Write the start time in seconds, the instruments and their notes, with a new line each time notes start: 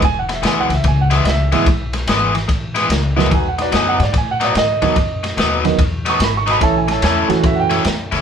0.02 upright bass E1, grand piano G#5, muted overdriven electric guitar stroke, kick, snare, ride
0.19 grand piano F#5
0.29 muted overdriven electric guitar stroke, snare, ride
0.34 grand piano E5
0.43 upright bass B1, overdriven electric guitar E3 G#3 B3 E4, snare, ride
0.47 grand piano G#5
0.60 grand piano F#5
0.69 upright bass C#2, muted overdriven electric guitar stroke, snare, ride
0.75 grand piano E5
0.84 upright bass C#2, muted overdriven electric guitar stroke, kick, snare, ride
0.88 grand piano G#5
1.01 grand piano F#5
1.10 overdriven electric guitar E3 G#3 B3 E4, snare, ride
1.15 grand piano E5
1.25 upright bass C#2, grand piano D#5, muted overdriven electric guitar stroke, snare, ride
1.29 grand piano E5
1.52 upright bass G#1, overdriven electric guitar E3 G#3 B3 E4, grand piano E3 G#3 B3 E4, snare, ride
1.66 upright bass B1, muted overdriven electric guitar stroke, kick, snare, ride
1.93 muted overdriven electric guitar stroke, snare, ride
2.07 upright bass G#1, overdriven electric guitar E3 G#3 B3 E4, snare, ride
2.35 muted overdriven electric guitar stroke, snare, ride
2.48 upright bass A1, muted overdriven electric guitar stroke, kick, snare, ride
2.75 overdriven electric guitar E3 G#3 B3 E4, snare, ride
2.90 upright bass C#2, muted overdriven electric guitar stroke, snare, ride
3.16 grand piano D#3 F#3 B3 D#4, overdriven electric guitar E3 G#3 B3 E4, snare
3.26 floor tom
3.31 upright bass B1, horn section D#4 F#4 B4, grand piano G#5, muted overdriven electric guitar stroke, kick, snare, ride
3.48 grand piano F#5
3.58 horn section D#4 F#4 B4, grand piano D5, muted overdriven electric guitar stroke, snare, ride
3.72 upright bass F#2, overdriven electric guitar B2 F#3 B3 D#4, snare, ride
3.76 grand piano G#5
3.89 grand piano F#5
3.99 upright bass G#2, muted overdriven electric guitar stroke, snare, ride
4.03 grand piano D5
4.13 upright bass A2, muted overdriven electric guitar stroke, kick, snare, ride
4.18 grand piano G#5
4.31 grand piano F#5
4.40 overdriven electric guitar B2 F#3 B3 D#4, snare, ride
4.44 grand piano D5
4.53 upright bass G#2, grand piano D5, muted overdriven electric guitar stroke, ride
4.57 grand piano D#5, snare
4.82 upright bass D#2, overdriven electric guitar B2 F#3 B3 D#4, grand piano D#3 F#3 B3 D#4, snare, ride
4.96 upright bass F#2, muted overdriven electric guitar stroke, kick, snare, ride
5.23 muted overdriven electric guitar stroke, snare, ride
5.37 upright bass D#2, overdriven electric guitar B2 F#3 B3 D#4, snare, ride
5.64 grand piano D#3 F#3 B3 D#4, muted overdriven electric guitar stroke, snare, ride
5.78 upright bass E2, muted overdriven electric guitar stroke, kick, snare, ride
6.05 overdriven electric guitar B2 F#3 B3 D#4, snare, ride
6.10 grand piano C#6
6.20 upright bass G#1, grand piano B5, muted overdriven electric guitar stroke, snare, ride
6.37 grand piano C#6
6.46 overdriven electric guitar B2 F#3 B3 D#4, snare, ride
6.51 grand piano B5
6.60 upright bass A1, grand piano E3 A3 C#4 E4 A5, horn section E4 A4 C#5, muted overdriven electric guitar stroke, kick, snare, ride
6.78 grand piano G#5
6.88 horn section E4 A4 C#5, grand piano A5, muted overdriven electric guitar stroke, snare, ride
7.02 upright bass E2, overdriven electric guitar A2 A3 C#4 E4, grand piano A5, snare, ride
7.28 upright bass F#2, grand piano E3 A3 C#4 F#4, muted overdriven electric guitar stroke, snare, ride
7.43 upright bass F#2, grand piano E5, muted overdriven electric guitar stroke, kick, snare, ride
7.56 grand piano F#5
7.60 grand piano G5
7.70 overdriven electric guitar A2 A3 C#4 E4, snare, ride
7.85 upright bass F#2, muted overdriven electric guitar stroke, snare, ride
8.12 upright bass F#1, overdriven electric guitar A2 A3 C#4 E4, snare, ride